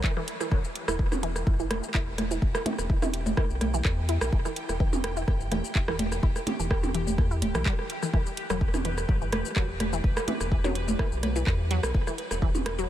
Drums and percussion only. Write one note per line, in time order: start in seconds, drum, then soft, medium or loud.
0.04 kick loud
0.04 clap loud
0.17 cross-stick soft
0.28 closed hi-hat medium
0.40 cross-stick soft
0.40 shaker medium
0.51 kick loud
0.51 cross-stick soft
0.64 shaker soft
0.76 closed hi-hat medium
0.88 cross-stick medium
0.88 shaker medium
0.99 kick loud
1.12 cross-stick soft
1.12 percussion blips medium
1.12 shaker soft
1.23 closed hi-hat loud
1.36 cross-stick soft
1.36 shaker medium
1.47 kick loud
1.60 shaker soft
1.71 cross-stick medium
1.71 closed hi-hat medium
1.71 percussion blips medium
1.83 shaker medium
1.94 kick loud
1.94 cross-stick soft
1.94 clap loud
2.18 cross-stick soft
2.18 closed hi-hat medium
2.18 percussion blips medium
2.31 shaker medium
2.42 kick loud
2.55 cross-stick medium
2.55 shaker soft
2.66 closed hi-hat medium
2.66 percussion blips medium
2.78 cross-stick soft
2.78 shaker medium
2.90 kick loud
3.02 cross-stick soft
3.02 percussion blips medium
3.02 shaker soft
3.14 closed hi-hat loud
3.26 percussion blips medium
3.26 shaker medium
3.37 kick loud
3.37 cross-stick medium
3.50 shaker soft
3.61 cross-stick soft
3.61 closed hi-hat loud
3.61 percussion blips medium
3.74 shaker medium
3.85 kick loud
3.85 cross-stick soft
3.85 clap loud
4.09 closed hi-hat medium
4.21 cross-stick medium
4.21 shaker medium
4.33 kick loud
4.45 cross-stick soft
4.45 shaker soft
4.56 closed hi-hat loud
4.69 cross-stick soft
4.69 shaker medium
4.80 kick loud
4.93 percussion blips medium
4.93 shaker soft
5.04 cross-stick medium
5.04 closed hi-hat loud
5.17 shaker soft
5.28 kick loud
5.28 cross-stick soft
5.40 shaker soft
5.52 cross-stick soft
5.52 closed hi-hat loud
5.52 percussion blips medium
5.64 shaker soft
5.75 kick loud
5.75 clap loud
5.88 cross-stick medium
5.99 closed hi-hat loud
5.99 percussion blips medium
6.12 cross-stick soft
6.12 shaker medium
6.23 kick loud
6.36 cross-stick soft
6.36 shaker soft
6.47 closed hi-hat loud
6.47 percussion blips medium
6.60 shaker medium
6.71 kick loud
6.71 cross-stick medium
6.83 percussion blips medium
6.83 shaker soft
6.94 closed hi-hat loud
7.07 percussion blips medium
7.07 shaker medium
7.18 kick loud
7.18 cross-stick soft
7.31 shaker soft
7.42 closed hi-hat loud
7.42 percussion blips medium
7.55 cross-stick medium
7.55 shaker medium
7.66 kick loud
7.66 clap loud
7.79 cross-stick soft
7.90 closed hi-hat medium
8.03 cross-stick soft
8.03 shaker medium
8.13 kick loud
8.13 cross-stick soft
8.26 shaker soft
8.37 closed hi-hat medium
8.50 cross-stick medium
8.50 shaker medium
8.61 kick loud
8.74 cross-stick soft
8.74 percussion blips medium
8.74 shaker soft
8.85 closed hi-hat medium
8.98 cross-stick soft
8.98 shaker soft
9.09 kick loud
9.21 shaker soft
9.32 cross-stick medium
9.32 closed hi-hat medium
9.32 percussion blips medium
9.45 shaker soft
9.56 kick loud
9.56 cross-stick soft
9.56 clap loud
9.80 cross-stick soft
9.80 closed hi-hat medium
9.80 percussion blips medium
9.93 shaker medium
10.04 kick loud
10.17 cross-stick medium
10.17 shaker soft
10.28 closed hi-hat medium
10.28 percussion blips medium
10.40 cross-stick soft
10.40 shaker medium
10.52 kick loud
10.64 cross-stick soft
10.64 percussion blips medium
10.64 shaker soft
10.75 closed hi-hat medium
10.88 percussion blips medium
10.88 shaker soft
10.99 kick loud
10.99 cross-stick medium
11.12 shaker soft
11.23 cross-stick soft
11.23 closed hi-hat medium
11.23 percussion blips medium
11.36 shaker medium
11.47 kick loud
11.47 cross-stick soft
11.47 clap medium
11.71 closed hi-hat medium
11.83 cross-stick medium
11.83 shaker medium
11.94 kick loud
12.07 cross-stick soft
12.07 shaker soft
12.18 closed hi-hat medium
12.31 cross-stick soft
12.31 shaker medium
12.42 kick loud
12.55 percussion blips medium
12.55 shaker soft
12.66 cross-stick medium
12.66 closed hi-hat medium
12.79 shaker medium